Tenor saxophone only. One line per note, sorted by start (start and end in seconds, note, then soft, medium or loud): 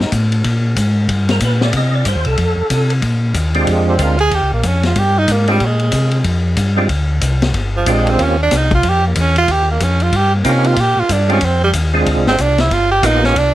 3.71 3.88 G#3 medium
3.90 4.04 C4 medium
4.02 4.20 F4 medium
4.20 4.36 G#4 loud
4.35 4.53 G4 loud
4.53 4.68 A#3 medium
4.67 4.85 C#4 medium
4.86 5.00 F4 medium
4.99 5.20 G4 loud
5.19 5.33 D#4 medium
5.32 5.50 A#3 medium
5.51 5.67 G3 medium
5.66 6.28 G#3 medium
7.77 7.93 F3 medium
7.92 8.12 G#3 medium
8.10 8.25 C4 loud
8.23 8.41 C#4 medium
8.42 8.58 D4 loud
8.56 8.74 D#4 medium
8.75 8.90 F4 loud
8.89 9.06 G4 loud
9.07 9.22 A#3 medium
9.20 9.37 C#4 medium
9.38 9.53 F4 loud
9.51 9.70 G4 loud
9.71 9.85 A#3 medium
9.83 10.04 C#4 medium
10.03 10.18 F4 loud
10.16 10.34 G4 loud
10.35 10.50 A#3 medium
10.48 10.68 C#4 medium
10.66 10.82 F4 loud
10.81 11.01 G4 loud
11.00 11.14 F4 loud
11.12 11.31 D4 medium
11.32 11.47 C#4 medium
11.45 11.63 C4 medium
11.64 11.71 G3 medium
12.28 12.43 C4 loud
12.42 12.62 D4 loud
12.60 12.74 E4 medium
12.73 12.91 F4 loud
12.91 13.07 G4 loud
13.06 13.26 D#4 loud
13.25 13.40 C#4 loud
13.38 13.54 D4 loud